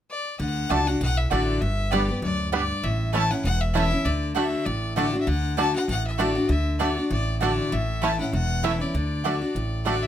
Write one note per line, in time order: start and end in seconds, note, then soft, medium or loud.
0.10 0.38 D5 medium
0.39 0.64 D2 medium
0.39 0.68 D3 medium
0.39 0.72 F#5 loud
0.69 0.96 C#2 medium
0.69 0.86 D3 medium
0.69 0.80 A3 medium
0.69 0.86 A3 medium
0.69 0.78 A3 medium
0.69 0.87 D4 medium
0.69 0.74 D4 medium
0.69 0.80 F#4 medium
0.69 0.85 F#4 medium
0.69 0.80 D5 medium
0.69 0.89 A5 loud
0.69 0.80 A5 medium
0.86 1.01 D4 soft
0.86 1.00 F#4 medium
0.86 1.01 F#5 medium
1.01 1.27 B1 medium
1.01 1.59 A2 medium
1.01 1.19 F#5 loud
1.18 1.31 E5 medium
1.30 1.57 A1 medium
1.30 1.60 D3 medium
1.30 1.41 A3 medium
1.30 1.60 A3 medium
1.30 1.39 A3 medium
1.30 1.61 D4 medium
1.30 1.34 D4 medium
1.30 1.41 F#4 medium
1.30 1.61 F#4 medium
1.30 1.41 D5 medium
1.30 1.63 D5 loud
1.30 1.41 A5 medium
1.62 2.10 G1 medium
1.62 2.20 G2 medium
1.62 1.94 E5 loud
1.91 2.08 D3 medium
1.91 2.00 G3 medium
1.91 2.08 G3 medium
1.91 2.01 B3 medium
1.91 2.08 B3 medium
1.91 2.00 B3 medium
1.91 2.00 D4 medium
1.91 2.02 G4 medium
1.91 2.07 G4 medium
1.91 2.02 D5 medium
1.91 2.23 D5 medium
1.91 2.02 G5 medium
2.08 2.23 B3 soft
2.08 2.22 G4 medium
2.22 2.70 D2 medium
2.22 2.51 F#2 medium
2.22 2.51 D5 medium
2.52 2.82 G2 medium
2.52 2.60 G3 medium
2.52 2.62 B3 medium
2.52 2.60 B3 medium
2.52 2.61 D4 medium
2.52 2.63 G4 medium
2.52 2.63 D5 medium
2.52 2.85 D5 loud
2.52 2.63 G5 medium
2.83 3.31 A1 medium
2.83 3.42 A2 medium
2.83 3.13 E5 medium
3.13 3.30 E3 medium
3.13 3.23 A3 medium
3.13 3.30 A3 medium
3.13 3.22 A3 medium
3.13 3.30 C#4 medium
3.13 3.22 C#4 medium
3.13 3.24 E4 medium
3.13 3.29 E4 medium
3.13 3.22 E4 medium
3.13 3.24 C#5 medium
3.13 3.33 A5 loud
3.13 3.24 A5 loud
3.31 3.45 C#4 soft
3.31 3.44 E4 medium
3.31 3.44 F#5 medium
3.44 3.92 E1 medium
3.44 4.03 E2 medium
3.44 3.63 F#5 loud
3.61 3.75 E5 medium
3.74 3.91 E3 medium
3.74 3.84 A3 medium
3.74 3.82 A3 medium
3.74 3.91 A3 medium
3.74 3.82 C#4 medium
3.74 3.92 C#4 medium
3.74 3.84 E4 medium
3.74 3.83 E4 medium
3.74 3.90 E4 loud
3.74 3.85 C#5 medium
3.74 4.07 E5 loud
3.74 3.85 A5 medium
3.91 4.06 C#4 soft
3.91 4.04 E4 medium
4.05 4.53 D2 medium
4.05 4.33 D3 medium
4.05 4.35 D5 medium
4.35 4.64 D3 medium
4.35 4.45 A3 medium
4.35 4.65 A3 medium
4.35 4.44 A3 medium
4.35 4.65 D4 medium
4.35 4.39 D4 medium
4.35 4.45 F#4 medium
4.35 4.65 F#4 medium
4.35 4.46 D5 medium
4.35 4.68 E5 medium
4.35 4.46 A5 medium
4.66 5.14 A1 medium
4.66 5.25 A2 medium
4.66 4.96 D5 medium
4.96 5.13 D3 medium
4.96 5.06 A3 medium
4.96 5.13 A3 medium
4.96 5.05 A3 medium
4.96 5.13 D4 loud
4.96 5.00 D4 medium
4.96 5.07 F#4 medium
4.96 5.12 F#4 loud
4.96 5.19 D5 loud
4.96 5.07 D5 medium
4.96 5.07 A5 medium
5.13 5.28 D4 medium
5.13 5.27 F#4 medium
5.21 5.30 E5 medium
5.27 5.75 D2 medium
5.27 5.56 D3 medium
5.27 5.58 F#5 medium
5.57 5.74 D3 medium
5.57 5.68 A3 medium
5.57 5.65 A3 medium
5.57 5.74 A3 medium
5.57 5.74 D4 medium
5.57 5.61 D4 medium
5.57 5.68 F#4 medium
5.57 5.73 F#4 medium
5.57 5.68 D5 medium
5.57 5.68 A5 medium
5.57 5.74 A5 loud
5.75 5.89 D4 soft
5.75 5.88 F#4 medium
5.75 5.88 F#5 medium
5.88 6.36 A1 medium
5.88 6.47 A2 medium
5.88 6.04 F#5 loud
6.07 6.22 E5 medium
6.18 6.35 D3 medium
6.18 6.28 A3 medium
6.18 6.27 A3 medium
6.18 6.35 A3 medium
6.18 6.22 D4 medium
6.18 6.36 D4 loud
6.18 6.29 F#4 medium
6.18 6.34 F#4 medium
6.18 6.29 D5 medium
6.18 6.49 D5 medium
6.18 6.29 A5 loud
6.35 6.50 D4 medium
6.35 6.49 F#4 medium
6.49 6.97 D2 medium
6.49 6.79 D3 medium
6.49 6.78 E5 medium
6.79 6.96 D3 medium
6.79 6.90 A3 medium
6.79 6.88 A3 medium
6.79 6.97 A3 medium
6.79 6.83 D4 medium
6.79 6.97 D4 medium
6.79 6.90 F#4 medium
6.79 6.96 F#4 medium
6.79 6.90 D5 medium
6.79 7.09 D5 medium
6.79 6.90 A5 medium
6.97 7.11 D4 soft
6.97 7.10 F#4 medium
7.10 7.59 A1 medium
7.10 7.69 A2 medium
7.10 7.40 D5 medium
7.41 7.70 D3 medium
7.41 7.51 A3 medium
7.41 7.71 A3 medium
7.41 7.49 A3 medium
7.41 7.45 D4 medium
7.41 7.71 D4 medium
7.41 7.51 F#4 medium
7.41 7.71 F#4 medium
7.41 7.51 D5 medium
7.41 7.74 D5 loud
7.41 7.51 A5 medium
7.72 8.20 A1 medium
7.72 8.31 A2 medium
7.72 8.05 E5 medium
8.02 8.18 E3 medium
8.02 8.12 A3 medium
8.02 8.19 A3 medium
8.02 8.10 A3 medium
8.02 8.10 C#4 medium
8.02 8.19 C#4 medium
8.02 8.12 E4 medium
8.02 8.11 E4 medium
8.02 8.18 E4 loud
8.02 8.12 C#5 medium
8.02 8.13 A5 medium
8.02 8.19 A5 medium
8.19 8.34 C#4 soft
8.19 8.32 E4 medium
8.19 8.32 F#5 medium
8.33 8.81 E1 medium
8.33 8.92 E2 medium
8.33 8.66 F#5 loud
8.63 8.79 E3 medium
8.63 8.73 A3 medium
8.63 8.80 A3 medium
8.63 8.71 A3 medium
8.63 8.71 C#4 medium
8.63 8.80 C#4 medium
8.63 8.74 E4 medium
8.63 8.72 E4 medium
8.63 8.78 E4 loud
8.63 8.74 C#5 medium
8.63 8.81 E5 loud
8.63 8.74 A5 medium
8.80 8.94 C#4 soft
8.80 8.93 E4 medium
8.80 9.82 D5 medium
8.94 9.42 D2 medium
8.94 9.23 D3 medium
9.24 9.41 D3 medium
9.24 9.34 A3 medium
9.24 9.33 A3 medium
9.24 9.41 A3 medium
9.24 9.28 D4 medium
9.24 9.42 D4 medium
9.24 9.35 F#4 medium
9.24 9.40 F#4 medium
9.24 9.35 D5 medium
9.24 9.35 A5 loud
9.42 9.56 D4 soft
9.42 9.55 F#4 medium
9.55 10.03 A1 medium
9.55 10.07 A2 medium
9.85 10.07 D3 medium
9.85 9.96 A3 medium
9.85 10.07 A3 medium
9.85 9.94 A3 medium
9.85 9.89 D4 medium
9.85 10.07 D4 medium
9.85 9.96 F#4 medium
9.85 10.07 F#4 medium
9.85 10.05 D5 loud
9.85 9.96 D5 medium
9.85 9.96 A5 medium
10.03 10.07 E5 medium